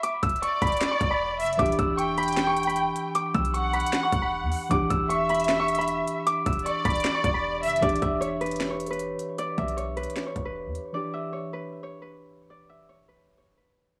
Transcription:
<<
  \new Staff \with { instrumentName = "Harp" } { \time 4/4 \key e \dorian \tempo 4 = 154 d'''8 e'''8 cis'''8 b''8. cis'''8 b''4~ b''16 | d'''8 e'''8 cis'''8 b''8. cis'''8 b''4~ b''16 | d'''8 e'''8 cis'''8 b''8. cis'''8 b''4~ b''16 | d'''8 e'''8 cis'''8 b''8. cis'''8 b''4~ b''16 |
d'''8 e'''8 cis'''8 b''8. cis'''8 b''4~ b''16 | d''8 e''8 cis''8 b'8. cis''8 b'4~ b'16 | d''8 e''8 cis''8 b'8. cis''8 b'4~ b'16 | d''8 e''8 cis''8 b'8. cis''8 b'4~ b'16 |
d''8 e''8 cis''8 b'8. cis''8 b'4~ b'16 | }
  \new Staff \with { instrumentName = "Violin section" } { \time 4/4 \key e \dorian r4 d''2~ d''8 e''8 | r4 g''2. | r4 fis''2. | r4 e''2. |
r4 d''2~ d''8 e''8 | r1 | r1 | r1 |
r1 | }
  \new Staff \with { instrumentName = "Synth keys" } { \time 4/4 \key e \dorian r1 | <e d' g'>1~ | <e d' g'>1 | <e d' g'>1~ |
<e d' g'>1 | <e d' g'>1~ | <e d' g'>1 | <e d' g'>1~ |
<e d' g'>1 | }
  \new Staff \with { instrumentName = "808-style bass" } { \clef bass \time 4/4 \key e \dorian r8 e,,8 r8 e,,8 r8 e,,4 fis,,8 | e,,8 e,,2. r8 | r8 b,,4~ b,,16 r8. e,,8. e,16 r8 | e,,8 e,,2. r8 |
r8 e,,8 r8 e,,8 r8 e,,4 fis,,8 | e,,8 e,,2. r8 | r8 b,,4~ b,,16 r8. e,,8. e,16 r8 | r1 |
r1 | }
  \new DrumStaff \with { instrumentName = "Drums" } \drummode { \time 4/4 \tuplet 3/2 { hh16 r16 r16 <hh bd>16 hh16 hh16 } hh8 <hh bd>32 hh32 hh32 hh32 <hc hh sn>8 <hh bd>8 \tuplet 3/2 { r16 r16 r16 <hh hho>16 hh16 hh16 } | \tuplet 3/2 { <hh bd>16 hh16 hh16 <hh bd>16 r16 r16 } hh8 hh32 hh32 hh32 hh32 \tuplet 3/2 { <hc hh sn>16 r16 r16 hh16 hh16 hh16 } hh8 hh8 | hh8 <hh bd>16 hh16 \tuplet 3/2 { hh16 r16 r16 hh16 hh16 hh16 } <hc hh sn>8 <hh bd>8 r8 hho8 | <hh bd>8 <hh bd>8 hh8 hh32 hh32 hh32 hh32 \tuplet 3/2 { <hc hh sn>16 r16 r16 hh16 hh16 hh16 } hh8 hh8 |
\tuplet 3/2 { hh16 r16 r16 <hh bd>16 hh16 hh16 } hh8 <hh bd>32 hh32 hh32 hh32 <hc hh sn>8 <hh bd>8 \tuplet 3/2 { r16 r16 r16 <hh hho>16 hh16 hh16 } | \tuplet 3/2 { <hh bd>16 hh16 hh16 <hh bd>16 r16 r16 } hh8 hh32 hh32 hh32 hh32 \tuplet 3/2 { <hc hh sn>16 r16 r16 hh16 hh16 hh16 } hh8 hh8 | hh8 <hh bd>16 hh16 \tuplet 3/2 { hh16 r16 r16 hh16 hh16 hh16 } <hc hh sn>8 <hh bd>8 r8 hh8 | r4 r4 r4 r4 |
r4 r4 r4 r4 | }
>>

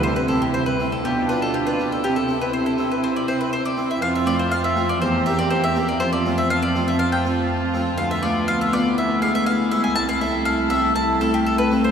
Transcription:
<<
  \new Staff \with { instrumentName = "Violin section" } { \time 4/4 \key c \major \tempo 4 = 121 g''1~ | g''1 | a''2 bes''2 | a''1~ |
\key a \minor a''2 gis''2 | a''1 | }
  \new Staff \with { instrumentName = "Mandolin" } { \time 4/4 \key c \major c''16 b'16 a'16 g'16 c''16 b'8 a'16 g'8 b'16 a'16 g'16 b'8 a'16 | g'16 a'8 b'16 c''16 a'8 b'16 c''16 d''16 c''16 b'16 c''16 d''8 e''16 | f''16 e''16 d''16 c''16 f''16 e''8 d''16 c''8 e''16 d''16 c''16 e''8 d''16 | c''16 d''8 e''16 f''16 d''8 e''16 f''16 g''16 r4. |
\key a \minor f''16 e''16 d''8 f''16 e''16 d''8 e''8 f''16 e''16 f''8 e''16 gis''16 | a''16 f''16 e''8 f''8 e''8 a''8 a'16 g'16 a'16 b'8 c''16 | }
  \new Staff \with { instrumentName = "Violin section" } { \time 4/4 \key c \major e'2 f'2 | e'1 | f'2 g'2 | f'1~ |
\key a \minor f'2 e'2~ | e'1 | }
  \new Staff \with { instrumentName = "Harpsichord" } { \time 4/4 \key c \major r8 <c' e'>4 <c' e'>8 r8 <d' f'>4 <d' f'>8 | r8 <c' e'>4 <c' e'>8 r8 <c' e'>4 <c' e'>8 | r8 <a c' f'>4 <a c' f'>8 r8 <bes c' g'>4 <bes c' g'>8 | r8 <a c' f'>4 <a c' f'>8 r8 <a c' f'>4 <a c' f'>8 |
\key a \minor r8 <a b f'>4 <a b f'>8 r8 <gis b e'>4 <gis b e'>8 | r8 <a c' e'>4 <a c' e'>8 r8 <a c' e'>4 <a c' e'>8 | }
  \new Staff \with { instrumentName = "Harpsichord" } { \clef bass \time 4/4 \key c \major c2 b,2 | c1 | f,2 e,2 | f,1 |
\key a \minor d,1 | c,1 | }
  \new Staff \with { instrumentName = "Viola section" } { \time 4/4 \key c \major c'2 d'2 | c'1~ | c'1 | c'1 |
\key a \minor b1 | a1 | }
  \new Staff \with { instrumentName = "Cello section" } { \clef bass \time 4/4 \key c \major c2 b,2 | c1 | f,2 e,2 | f,1 |
\key a \minor d,1 | c,1 | }
>>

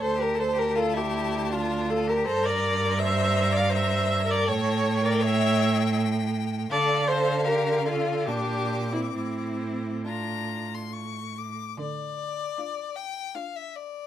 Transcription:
<<
  \new Staff \with { instrumentName = "Violin" } { \time 3/4 \key d \minor \tempo 4 = 80 a''2. | bes''2. | g''2. | f''2 d'''4~ |
d'''4 bes''8. c'''16 cis'''8 d'''8 | d''4. g''8 f''16 e''16 d''8 | }
  \new Staff \with { instrumentName = "Viola" } { \time 3/4 \key d \minor c''16 bes'16 c''16 bes'16 a'16 g'8. f'8 a'16 bes'16 | c''16 d''8. e''8. f''16 e''8. d''16 | cis''8. d''16 e''4 r4 | d''8 c''8 bes'8 a'8 g'8. e'16 |
e'4 f'4 r4 | r4 d'4 d'4 | }
  \new Staff \with { instrumentName = "Violin" } { \time 3/4 \key d \minor a'16 g'16 a'16 g'16 f'16 e'8. d'8 f'16 g'16 | a'16 bes'8. c''8. d''16 c''8. bes'16 | a'8. bes'16 cis''4 r4 | a'8 a'8 g'8 f'8 d'8. c'16 |
c'4 d'4 r4 | r4 f'4 f'4 | }
  \new Staff \with { instrumentName = "Cello" } { \clef bass \time 3/4 \key d \minor d,2. | g,2. | a,2. | d2 bes,4 |
a,2~ a,8. r16 | d4 r2 | }
>>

